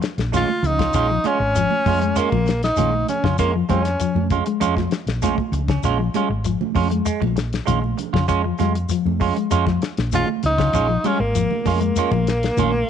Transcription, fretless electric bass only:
0.18 0.43 A#1 medium
0.63 0.88 C#2 medium
0.94 1.19 A#1 medium
1.24 muted fretless electric bass stroke soft
1.40 1.65 G#1 medium
1.86 2.11 F2 medium
2.16 muted fretless electric bass stroke soft
2.32 2.70 A#1 medium
2.78 3.03 A#1 medium
3.24 3.61 F2 medium
3.69 3.94 F2 medium
4.15 4.40 F2 medium
4.61 4.86 F2 medium
5.06 5.32 A#1 medium
5.52 5.77 C#2 medium
5.83 6.09 A#1 medium
6.15 muted fretless electric bass stroke soft
6.29 6.55 G#1 medium
6.75 7.00 F2 medium
7.07 muted fretless electric bass stroke soft
7.21 7.59 A#1 medium
7.68 7.93 A#1 medium
8.14 8.51 F2 medium
8.60 8.85 F2 medium
9.05 9.30 F2 medium
9.52 9.77 F2 medium
9.98 10.23 A#1 medium
10.44 10.68 C#2 medium
10.73 10.98 A#1 medium
11.04 muted fretless electric bass stroke soft
11.19 11.45 G#1 medium
11.65 11.90 F2 medium
11.96 muted fretless electric bass stroke soft
12.11 12.49 A#1 medium
12.57 12.82 A#1 medium

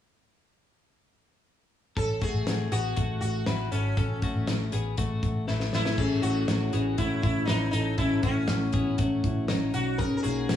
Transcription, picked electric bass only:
1.97 2.18 A1 medium
2.34 2.45 A1 medium
2.46 2.67 A1 medium
2.72 2.93 A1 medium
2.97 3.18 A1 medium
3.22 3.43 A1 medium
3.47 3.68 A1 medium
3.72 3.93 G#1 medium
3.98 4.18 A1 medium
4.36 4.46 A1 medium
4.48 4.68 A1 medium
4.74 4.94 A1 medium
4.98 5.19 A1 medium
5.23 5.44 A1 medium
5.49 5.69 A1 medium
5.74 5.94 A1 medium
5.98 6.19 A1 loud
6.23 6.44 A1 medium
6.48 6.69 A1 medium
6.74 6.94 A1 medium
6.99 7.19 A1 medium
7.24 7.44 A1 medium
7.49 7.70 A1 medium
7.73 7.94 A1 medium
7.98 8.19 A1 loud
8.23 8.44 A1 medium
8.49 8.69 A1 medium
8.74 8.94 A1 medium
8.99 9.20 A1 medium
9.24 9.45 A1 medium
9.50 9.70 A1 medium
9.75 10.16 B1 medium
10.25 10.45 B1 medium
10.50 10.56 B1 medium

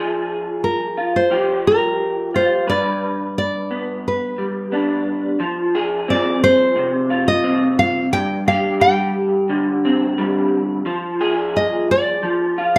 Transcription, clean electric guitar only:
0.00 1.30 F3 medium
0.00 1.27 G#4 medium
0.97 1.27 F4 soft
1.31 2.67 F3 medium
1.31 2.67 G4 medium
2.34 2.63 F4 soft
2.67 5.40 G2 medium
2.67 5.36 B4 medium
3.71 4.71 B3 soft
4.38 5.36 G3 soft
4.72 5.36 B3 soft
4.72 5.40 D4 soft
5.40 8.13 F3 medium
5.75 8.09 G#4 medium
6.08 7.42 C4 medium
6.76 8.12 C3 medium
7.10 8.08 F4 medium
7.44 8.08 C4 medium
8.13 10.86 G2 medium
8.48 10.86 G4 medium
8.80 10.17 G3 medium
9.49 10.82 D3 medium
9.85 10.82 C4 medium
10.18 10.82 G3 medium
10.86 12.22 F3 medium
11.21 12.79 G#4 medium
12.23 12.79 F3 medium
12.58 12.79 F4 medium

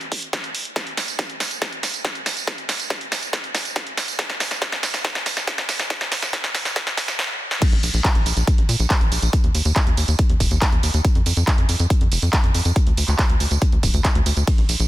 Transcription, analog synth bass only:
7.72 7.79 A#1 medium
7.83 7.90 A#1 medium
7.94 8.01 A#1 medium
8.15 8.22 A#1 medium
8.26 8.33 A#1 loud
8.37 8.44 A#1 medium
8.58 8.65 A#1 medium
8.69 8.76 A#2 loud
8.80 8.87 A#1 loud
9.01 9.08 A#1 medium
9.12 9.19 A#1 loud
9.22 9.29 A#1 loud
9.44 9.51 D#2 medium
9.55 9.62 D#2 medium
9.65 9.72 D#2 medium
9.87 9.94 D#2 medium
9.97 10.05 D#2 loud
10.08 10.15 D#2 medium
10.30 10.37 D#2 medium
10.40 10.47 D#1 loud
10.51 10.58 D#2 medium
10.72 10.79 D#2 medium
10.83 10.90 D#2 loud
10.94 11.01 D#2 medium
11.15 11.22 F2 medium
11.26 11.33 F2 loud
11.37 11.44 F2 medium
11.58 11.65 F2 medium
11.69 11.76 F2 medium
11.80 11.87 F2 medium
12.01 12.08 F2 medium
12.12 12.19 F1 loud
12.22 12.30 F2 medium
12.44 12.51 F2 medium
12.55 12.62 F2 loud
12.65 12.72 F2 medium
12.87 12.94 D2 medium
12.97 13.05 D2 loud
13.08 13.15 D2 medium
13.30 13.37 D2 medium
13.40 13.47 D2 loud
13.51 13.58 D2 medium
13.73 13.80 D2 medium
13.83 13.90 D1 loud
13.94 14.01 D2 medium
14.15 14.22 D2 medium
14.26 14.33 D2 loud
14.37 14.44 D2 loud
14.58 14.65 A#1 medium
14.69 14.76 A#1 medium
14.80 14.87 A#1 medium

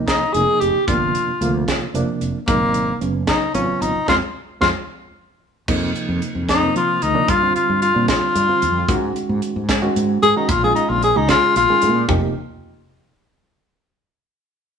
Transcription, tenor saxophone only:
0.07 0.35 D#4 medium
0.33 0.62 G#4 medium
0.60 0.86 G4 medium
0.87 1.64 F4 medium
2.47 2.97 A#3 medium
3.28 3.53 D#4 medium
3.55 3.83 C#4 medium
3.81 4.08 D#4 medium
4.09 4.15 F4 medium
4.61 4.68 F4 medium
6.49 6.75 D#4 medium
6.77 7.04 F4 medium
7.03 7.31 D#4 medium
7.30 7.55 F4 medium
7.55 7.81 F4 medium
7.82 8.08 F4 medium
8.09 9.12 F4 medium
10.23 10.35 G#4 loud
10.37 10.51 D#4 medium
10.49 10.62 F4 loud
10.64 10.75 G#4 loud
10.75 10.91 D#4 medium
10.89 11.02 F4 medium
11.04 11.18 G#4 loud
11.17 11.29 D#4 medium
11.30 11.55 F4 loud
11.57 12.08 F4 loud

